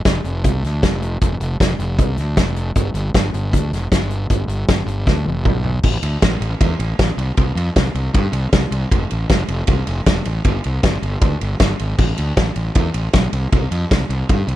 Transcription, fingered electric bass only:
0.05 0.23 F1 medium
0.24 0.42 F1 medium
0.45 0.62 C2 medium
0.63 0.81 D2 medium
0.83 1.19 F1 medium
1.22 1.39 F1 medium
1.40 1.58 F1 medium
1.60 1.78 F1 medium
1.79 1.97 F1 medium
1.98 2.16 C2 medium
2.17 2.35 D2 medium
2.37 2.73 F1 medium
2.76 2.93 G1 medium
2.94 3.12 G1 medium
3.14 3.32 G1 medium
3.34 3.52 G1 medium
3.53 3.71 D2 medium
3.71 3.90 F1 medium
3.92 4.28 G1 medium
4.30 4.47 G1 medium
4.47 4.66 G1 medium
4.69 4.85 G1 medium
4.86 5.05 G1 medium
5.07 5.25 D2 medium
5.26 5.44 F1 medium
5.45 5.81 B1 medium
5.84 5.97 A1 medium
6.03 6.16 D2 medium
6.23 6.35 A1 medium
6.40 6.54 A1 medium
6.61 6.74 E2 medium
6.79 6.92 A1 medium
6.99 7.12 A1 medium
7.17 7.30 C2 medium
7.37 7.50 C2 medium
7.55 7.69 F2 loud
7.76 7.89 C2 medium
7.95 8.08 C2 medium
8.14 8.27 G2 medium
8.32 8.46 C2 medium
8.52 8.65 C2 medium
8.71 8.84 C2 medium
8.91 9.04 F1 loud
9.12 9.24 A1 medium
9.30 9.43 F1 medium
9.48 9.61 F1 medium
9.67 9.80 C2 medium
9.87 10.00 F1 medium
10.06 10.19 F1 medium
10.26 10.39 A1 medium
10.45 10.58 G1 loud
10.65 10.78 C2 medium
10.83 10.96 G1 medium
11.02 11.15 G1 medium
11.21 11.34 D2 medium
11.41 11.54 G1 medium
11.60 11.73 G1 medium
11.80 11.93 G#1 medium
11.99 12.12 A1 loud
12.18 12.31 D2 medium
12.37 12.50 A1 medium
12.56 12.69 A1 loud
12.75 12.88 E2 medium
12.94 13.07 A1 medium
13.14 13.27 B1 medium
13.33 13.46 C2 medium
13.52 13.65 C2 loud
13.71 13.84 F2 medium
13.91 14.04 C2 loud
14.09 14.22 C2 loud
14.30 14.42 G2 medium
14.47 14.56 C2 medium

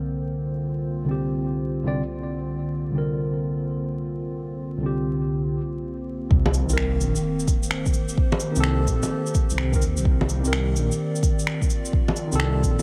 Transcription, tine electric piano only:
0.00 1.01 C2 medium
0.00 1.02 D3 medium
0.00 1.04 C4 medium
0.00 1.05 A#4 medium
1.03 1.82 C2 medium
1.03 1.83 D3 medium
1.09 1.84 C4 medium
1.09 1.85 G4 medium
1.84 2.00 C2 medium
1.84 2.01 D3 medium
1.84 2.02 C4 medium
1.88 2.02 D5 medium
2.90 4.76 C2 medium
2.90 4.77 D3 medium
2.95 4.79 C4 medium
2.95 4.80 A#4 medium
4.78 5.56 C2 medium
4.78 5.58 D3 medium
4.83 5.59 C4 medium
4.83 5.60 G4 medium
6.65 8.51 D#3 medium
6.65 8.53 C4 medium
6.73 8.55 A#4 medium
8.52 9.31 D#3 medium
8.56 9.33 C4 medium
8.60 9.35 A4 medium
9.72 9.82 D#3 loud
9.72 9.83 C4 medium
9.72 9.84 A#4 loud
10.40 12.26 D#3 medium
10.44 12.28 C4 medium
10.44 12.30 A#4 medium
12.27 12.82 D#3 medium
12.32 12.82 C4 medium
12.32 12.82 A4 medium

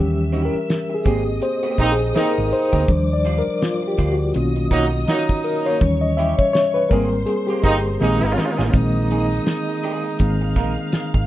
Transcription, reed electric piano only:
0.00 0.47 E3 medium
0.00 0.47 G3 soft
0.00 0.47 C#4 medium
0.00 0.46 G4 medium
0.45 0.95 A#4 medium
0.94 1.44 G#4 medium
1.06 1.57 A#3 soft
1.06 1.57 C4 medium
1.06 1.57 G4 medium
1.43 1.93 C5 medium
1.92 2.14 G#4 medium
2.17 2.54 A#4 medium
2.53 3.09 C5 loud
2.88 3.39 F3 medium
2.88 3.40 G3 soft
2.88 3.40 D4 medium
3.13 3.38 D5 medium
3.38 3.63 A#4 medium
3.63 3.87 F4 medium
3.88 4.12 G4 medium
4.12 4.80 F#4 medium
4.34 4.86 D#3 medium
4.34 4.86 A#3 medium
4.34 4.86 C#4 medium
4.34 4.86 F4 medium
5.44 5.66 A#4 medium
5.66 6.03 C#5 medium
5.81 6.32 E3 medium
5.81 6.32 G3 soft
5.81 6.32 C#4 medium
6.01 6.18 D#5 medium
6.17 6.39 E5 loud
6.38 6.52 C#5 loud
6.53 6.76 C#5 loud
6.74 6.91 B4 loud
6.89 7.96 G3 medium
6.89 7.96 A#3 medium
6.89 7.97 C4 medium
6.89 7.28 A#4 medium
7.26 7.36 G#4 medium
7.47 8.17 G4 medium
8.00 8.51 D#3 medium
8.00 8.51 G#3 medium
8.00 8.51 C4 medium
8.73 9.79 D#3 medium
8.73 9.79 G#3 soft
8.73 9.80 C4 medium
10.20 10.53 D#3 soft
10.20 10.53 G#3 soft
10.20 10.53 C4 medium

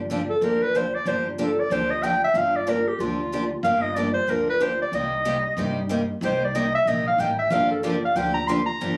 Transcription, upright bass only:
0.00 0.29 G1 medium
0.41 0.93 D2 medium
1.05 1.57 G1 medium
1.70 2.22 D2 medium
2.34 2.86 G1 medium
2.99 3.51 D2 medium
3.63 4.15 G1 loud
4.27 4.79 D2 medium
4.92 5.44 C2 medium
5.57 6.09 G2 medium
6.21 6.73 C2 medium
6.85 7.13 A#1 medium
7.18 7.46 A1 medium
7.51 8.02 G1 loud
8.16 8.67 D2 medium
8.82 8.97 G1 loud

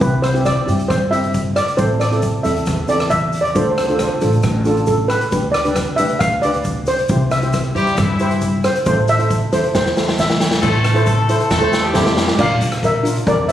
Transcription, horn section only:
7.75 7.96 G3 medium
7.75 7.96 G4 loud
7.97 8.52 E3 medium
7.97 8.52 E4 loud
10.62 11.03 A3 loud
10.62 11.03 A4 loud
11.07 11.48 A3 medium
11.07 11.48 A4 loud
11.50 11.81 A3 loud
11.50 11.81 A4 loud
11.84 12.39 G3 medium
11.84 12.39 G4 medium

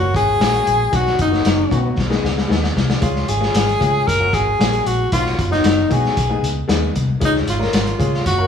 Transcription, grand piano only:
0.00 0.30 F#3 medium
0.00 0.30 A#3 medium
0.00 0.30 C#4 medium
0.00 0.30 F#4 medium
0.40 0.79 F#3 medium
0.40 0.47 G#3 soft
0.40 0.79 C#4 medium
0.40 0.80 F#4 medium
0.46 0.82 A#3 medium
0.91 1.21 F#3 medium
0.91 1.22 B3 medium
0.91 1.22 D#4 medium
0.91 1.22 F#4 medium
1.31 1.61 F#3 medium
1.31 1.61 B3 medium
1.31 1.61 D#4 medium
1.31 1.61 F#4 medium
1.71 1.97 F#3 medium
1.71 1.97 B3 medium
1.71 1.98 D#4 medium
1.71 1.98 F#4 medium
2.10 2.40 G#3 medium
2.10 2.40 B3 medium
2.10 2.40 D#4 medium
2.10 2.40 G#4 medium
2.48 2.88 G#3 medium
2.48 2.88 B3 medium
2.48 2.88 D#4 medium
2.48 2.89 G#4 medium
3.01 3.31 G#3 medium
3.01 3.31 C#4 medium
3.01 3.31 F4 medium
3.01 3.31 G#4 medium
3.40 3.70 G#3 medium
3.40 3.70 C#4 medium
3.40 3.70 F4 medium
3.40 3.70 G#4 medium
3.80 4.07 G#3 medium
3.80 4.07 C#4 medium
3.80 4.07 F4 medium
3.80 4.07 G#4 medium
4.20 4.49 F#3 medium
4.20 4.49 A#3 medium
4.20 4.50 C#4 medium
4.20 4.50 F#4 medium
4.59 4.98 F#3 medium
4.59 4.98 A#3 medium
4.59 4.98 C#4 medium
4.59 4.66 G4 medium
4.67 5.02 G#4 medium
5.12 5.41 F#3 medium
5.12 5.42 B3 medium
5.12 5.42 D#4 medium
5.12 5.42 F#4 medium
5.51 5.80 F#3 medium
5.51 5.80 B3 medium
5.51 5.80 D#4 medium
5.51 5.80 F#4 medium
5.89 6.16 F#3 medium
5.89 6.16 B3 medium
5.89 6.16 D#4 medium
5.89 6.16 F#4 medium
6.29 6.58 G#3 medium
6.29 6.59 B3 medium
6.29 6.59 D#4 medium
6.29 6.59 G#4 medium
6.68 7.07 G#3 medium
6.68 7.07 B3 medium
6.68 7.07 D#4 medium
6.68 7.07 G#4 medium
7.20 7.50 G#3 medium
7.20 7.50 C#4 medium
7.20 7.50 F4 medium
7.20 7.50 G#4 medium
7.59 7.88 G#3 medium
7.59 7.89 C#4 medium
7.59 7.89 F4 medium
7.59 7.89 A#4 medium
7.99 8.25 G#3 medium
7.99 8.25 C#4 medium
7.99 8.25 F4 medium
7.99 8.26 G#4 medium
8.37 8.47 A#3 medium
8.37 8.47 C#4 medium
8.37 8.47 F#4 medium
8.37 8.47 A#4 medium

